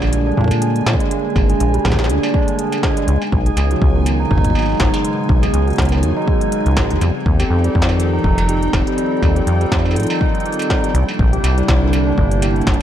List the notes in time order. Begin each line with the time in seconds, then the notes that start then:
Already playing: A#1 G3 G#3 A#3 D4 G#4 G#5
0.02 D3, struck metal
0.13 closed hi-hat
0.26 D4
0.37 A#2 D4, kick
0.41 kick
0.44 kick
0.48 kick, closed hi-hat, struck metal
0.62 G#4, closed hi-hat
0.76 closed hi-hat
0.86 A#2 G#3, snare, struck metal
0.93 kick
1.00 G#3, closed hi-hat
1.11 G#3, closed hi-hat
1.36 G#1, kick, struck metal
1.49 G#4, closed hi-hat
1.60 A#1 G#4, closed hi-hat
1.74 G3, closed hi-hat
1.85 A#1, kick, snare, struck metal
1.88 kick, struck metal
1.90 kick, snare
1.93 kick, struck metal
1.96 D3, kick, snare, struck metal
2.04 snare
2.09 D2, closed hi-hat
2.23 D4, struck metal
2.34 D4, kick
2.48 closed hi-hat
2.59 G#4, closed hi-hat
2.72 closed hi-hat, struck metal
2.83 G#3, kick, snare
2.97 G#3, closed hi-hat
3.08 C#2 C#3 G#3 B3 D#4, closed hi-hat
3.22 struck metal
3.32 B1, kick
3.46 G#4, closed hi-hat
3.57 C#2 G#4, closed hi-hat, struck metal
3.71 F#3, closed hi-hat
3.82 C#2, kick
3.95 D#3
4.06 closed hi-hat, struck metal
4.20 D#4
4.31 G#1 D#4, kick
4.38 kick
4.44 kick, closed hi-hat
4.50 kick
4.55 G#4, struck metal
4.59 struck metal
4.62 struck metal
4.66 struck metal
4.69 struck metal
4.72 struck metal
4.74 struck metal
4.77 G#1 G#3, kick, snare, struck metal
4.94 G#3, closed hi-hat, struck metal
5.04 G#3, closed hi-hat
5.29 B1, kick
5.43 G#4, closed hi-hat, struck metal
5.54 C#2 G#4, closed hi-hat
5.67 F#3, closed hi-hat
5.70 closed hi-hat
5.73 closed hi-hat
5.76 C#2, kick, snare, closed hi-hat
5.78 closed hi-hat
5.82 closed hi-hat
5.85 closed hi-hat
5.89 D#3, closed hi-hat, struck metal
6.03 E2, closed hi-hat
6.16 D#4
6.27 G#3, kick
6.41 closed hi-hat
6.52 G#3, closed hi-hat
6.66 C#2 D#3, closed hi-hat
6.77 G#1 G#3, kick, snare, struck metal
6.90 E2 D#4, closed hi-hat
7.01 F2 F3 G3 C4 D#4 G4 A4 G5, closed hi-hat, struck metal
7.26 D#2, kick
7.40 G4, closed hi-hat, struck metal
7.50 F2 G4
7.64 G3, closed hi-hat
7.75 F2, kick
7.82 snare
7.89 D#3, struck metal
8.00 closed hi-hat
8.13 D#4
8.24 F1 D#4, kick
8.38 closed hi-hat, struck metal
8.49 G4, closed hi-hat
8.63 closed hi-hat
8.73 F1 G3, kick, snare, struck metal
8.87 G3, closed hi-hat
8.98 G3 F4, closed hi-hat
9.22 D#2, kick, struck metal
9.36 G4, closed hi-hat
9.47 F2 G4, closed hi-hat
9.61 G3, closed hi-hat
9.72 F2, kick, snare, struck metal
9.79 struck metal
9.85 D#3, struck metal
9.91 struck metal
9.96 A2, closed hi-hat
10.00 closed hi-hat
10.03 closed hi-hat
10.07 D#4, closed hi-hat, struck metal
10.21 D#4, kick
10.35 closed hi-hat
10.40 closed hi-hat
10.46 G4, closed hi-hat
10.52 closed hi-hat
10.59 closed hi-hat, struck metal
10.62 closed hi-hat
10.70 G3, kick, snare
10.84 G3, closed hi-hat
10.95 C2 C3 G3 A#3 D4 E4, closed hi-hat
11.09 struck metal
11.19 A#1, kick
11.33 G4, closed hi-hat
11.44 C2 G4, closed hi-hat, struck metal
11.58 G3, closed hi-hat
11.68 C2, kick, snare
11.82 D3
11.93 closed hi-hat, struck metal
12.07 D4
12.18 G1 D4, kick
12.31 closed hi-hat
12.42 G4, closed hi-hat, struck metal
12.56 closed hi-hat
12.61 closed hi-hat
12.67 G1 G3, kick, snare, closed hi-hat
12.74 closed hi-hat